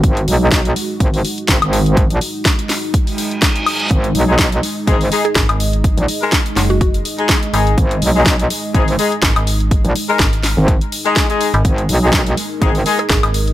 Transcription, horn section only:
X:1
M:4/4
L:1/16
Q:"Swing 16ths" 1/4=124
K:G#m
V:1 name="Horn section"
z16 | z16 | z3 [G,DG] z4 [G,DG] z [G,DG] z4 z | z3 [G,DA] z6 z [G,DG]2 z [G,DG]2 |
z3 [G,DG] z4 [G,DG] z [G,DG] z4 z | z3 [G,DA] z6 z [G,DG]2 [G,DG]2 z | z3 [G,DG] z4 [G,DG] z [G,DG] z4 z |]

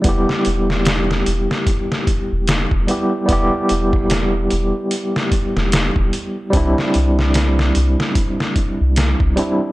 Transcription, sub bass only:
X:1
M:4/4
L:1/16
Q:"Swing 16ths" 1/4=74
K:Em
V:1 name="Sub bass" clef=bass
E,,, z E,,,4 E,,, z4 E,,,2 E,,, z2 | E,,, z E,,,4 E,,, z4 E,,,2 E,,, z2 | C,, z C,,4 C,, z4 C,,2 C,, z2 |]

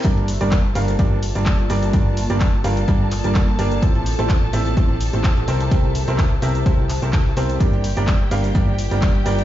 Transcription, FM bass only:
X:1
M:4/4
L:1/16
Q:"Swing 16ths" 1/4=127
K:Gdor
V:1 name="FM bass" clef=bass
G,,,3 G,,,3 G,,,2 G,,,3 G,,,3 G,,,2 | G,,,3 G,,,3 G,,,2 G,,,3 G,,,3 G,,,2 | A,,,3 A,,,3 A,,,2 A,,,3 A,,,3 C,,2 | C,,3 C,,3 C,,2 C,,3 C,,3 C,,2 |
G,,,3 G,,,3 G,,,2 G,,,3 G,,,3 G,,,2 |]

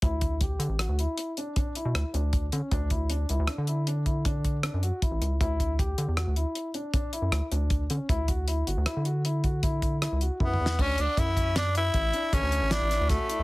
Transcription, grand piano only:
X:1
M:7/4
L:1/8
Q:1/4=156
K:D
V:1 name="Grand piano"
E2 G2 F E2 D D E2 D2 C | D E D E D E D E D2 D F E2 | E2 G2 F E2 D D E2 D2 C | E F E F E F E F E2 E F E2 |
D2 E2 D E2 D D,2 E E F E |]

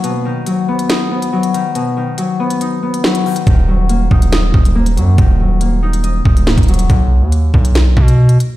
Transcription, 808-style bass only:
X:1
M:4/4
L:1/16
Q:1/4=140
K:Cblyd
V:1 name="808-style bass" clef=bass
z16 | z16 | E,,,6 E,,,4 E,,,4 G,,2 | E,,,8- E,,,2 E,,,2 D,,, E,,,3 |
=B,,,3 ^D,,3 B,,,4 =B,,4 z2 |]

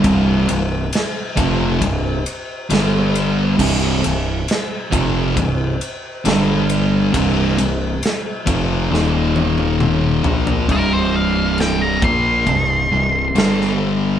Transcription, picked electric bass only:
X:1
M:4/4
L:1/8
Q:1/4=68
K:Cm
V:1 name="Picked electric bass" clef=bass
C,,, C,,, z F,,, C,,, z G,,,2 | C,,, C,,, z F,,, C,,, z G,,,2 | C,,, C,,, z F,,, E,,,3 B,,, | C,,,3 B,,, C,,, C,,, G,,,2 |]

